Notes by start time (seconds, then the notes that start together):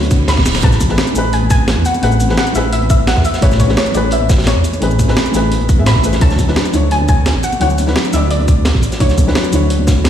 Already playing: F#3 D4 E4 B4 C#5, reverse cymbal
0.02 D2, closed hi-hat, high conga
0.11 kick, closed hi-hat, high conga, cabasa
0.20 D2
0.28 B5, snare, closed hi-hat
0.37 D1, kick, snare
0.46 snare, closed hi-hat, cabasa
0.55 snare, closed hi-hat, cabasa
0.62 A1 A3 C#4 G#4 B4 A5, kick, closed hi-hat
0.72 snare, cabasa
0.80 kick, closed hi-hat, high conga, cabasa
0.88 A1 A3 C#4 G#4 B4, snare
0.98 snare, closed hi-hat
1.07 closed hi-hat, cabasa
1.13 A1 A3 C#4 G#4, closed hi-hat, cabasa
1.18 B4
1.33 G#5, closed hi-hat
1.42 A1, high conga
1.50 G#5, kick, closed hi-hat, cabasa
1.59 A1
1.68 snare, closed hi-hat
1.77 E2
1.85 F#5, closed hi-hat, cabasa
1.94 closed hi-hat, high conga, cabasa
2.01 A1 A3 C#4 G#4 B4 F#5, closed hi-hat
2.12 cabasa
2.20 closed hi-hat, high conga, cabasa
2.28 A1 A3 C#4 G#4 B4, snare
2.37 F#5, snare, closed hi-hat
2.47 closed hi-hat, cabasa
2.53 A1 A3 C#4 G#4 E5, snare, closed hi-hat, cabasa
2.58 B4
2.72 E5, closed hi-hat
2.82 A1, closed hi-hat, high conga
2.90 E5, kick, closed hi-hat, cabasa
2.99 A1
3.07 F#5, snare, closed hi-hat
3.16 E2, kick, snare
3.25 E5, closed hi-hat, cabasa
3.34 snare, closed hi-hat, cabasa
3.41 A1 A3 C#4 G#4 B4 C#5, kick, closed hi-hat
3.51 snare, cabasa
3.59 C#5, kick, closed hi-hat, high conga, cabasa
3.68 A1 A3 C#4 G#4 B4, snare
3.77 C#5, snare, closed hi-hat
3.86 closed hi-hat, cabasa
3.92 A1 A3 C#4 G#4 D5, closed hi-hat, cabasa
3.97 B4
4.11 E5, closed hi-hat
4.21 A1, high conga
4.29 kick, snare, closed hi-hat, cabasa
4.38 A1, snare, closed hi-hat
4.43 snare, closed hi-hat
4.46 C#5, snare, closed hi-hat
4.56 E2
4.64 closed hi-hat, cabasa
4.73 closed hi-hat, high conga, cabasa
4.80 A1 A3 C#4 G#4 B4, closed hi-hat
4.91 cabasa
4.99 kick, closed hi-hat, high conga, cabasa
5.07 A1 A3 C#4 G#4 B4, snare
5.17 snare, closed hi-hat
5.26 closed hi-hat, cabasa
5.31 A1 A3 C#4 G#4, snare, closed hi-hat, cabasa
5.37 B4
5.52 closed hi-hat
5.60 A1, closed hi-hat, high conga
5.69 kick, closed hi-hat, cabasa
5.77 A2 A3 C#4 G#4 E5
5.86 B5, snare, closed hi-hat
5.96 A1, kick, snare
6.03 A3 C#4 G#4 B4, closed hi-hat, cabasa
6.13 snare, closed hi-hat, cabasa
6.20 D2 F#3 D4 E4 C#5 A5, kick, closed hi-hat
6.30 snare, cabasa
6.39 kick, closed hi-hat, high conga, cabasa
6.47 D2 F#3 D4 E4 B4, snare
6.56 snare, closed hi-hat
6.65 closed hi-hat, cabasa
6.71 D2 F#3 D4 E4, closed hi-hat, cabasa
6.76 C#5
6.91 G#5, closed hi-hat
7.00 D2, high conga
7.08 G#5, kick, closed hi-hat, cabasa
7.18 D2
7.26 snare, closed hi-hat
7.35 A1
7.43 F#5, closed hi-hat, cabasa
7.52 closed hi-hat, high conga, cabasa
7.59 D2 F#3 D4 E4 C#5 F#5, closed hi-hat
7.70 cabasa
7.78 closed hi-hat, high conga, cabasa
7.86 D2 F#3 D4 E4 B4, snare
7.96 snare, closed hi-hat
8.05 closed hi-hat, cabasa
8.11 D2 F#3 D4 E4 E5, snare, closed hi-hat, cabasa
8.16 D5
8.30 D5, closed hi-hat
8.40 D2, closed hi-hat, high conga
8.48 kick, closed hi-hat, cabasa
8.57 D2
8.65 snare, closed hi-hat
8.75 A1, kick, snare
8.83 closed hi-hat, cabasa
8.92 snare, closed hi-hat, cabasa
8.99 D2 F#3 D4 E4 C#5, kick, closed hi-hat
9.09 snare, cabasa
9.17 kick, closed hi-hat, high conga, cabasa
9.26 D2 F#3 D4 E4 B4, snare
9.35 snare, closed hi-hat
9.44 closed hi-hat, cabasa
9.50 D2 F#3 D4 E4, closed hi-hat, cabasa
9.55 C#5
9.70 closed hi-hat
9.79 D2, high conga
9.87 kick, snare, closed hi-hat, cabasa
9.97 D2
10.04 snare, closed hi-hat